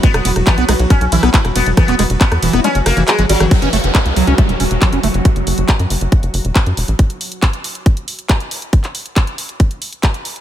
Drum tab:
RD |--x---x---x---x-|--x---x---x---x-|----------------|----------------|
HH |xxoxxxoxxxoxxxox|xxoxxxoxxxoxxxox|xxoxxxoxxxoxxxox|xxoxxxoxxxoxxxox|
CP |----x-------x---|-x--x-------x---|----x-------x---|----x-------x---|
SD |-r-r--r-r--r-r--|r-r--r-r--r-r--r|----------------|----------------|
BD |o---o---o---o---|o---o-----------|o---o---o---o---|o---o---o---o---|

RD |----------------|----------------|
HH |xxoxxxoxxxoxxxox|xxoxxxoxxxoxxxox|
CP |----x-------x---|-x--x-------x---|
SD |----------------|----------------|
BD |o---o---o---o---|o---o---o---o---|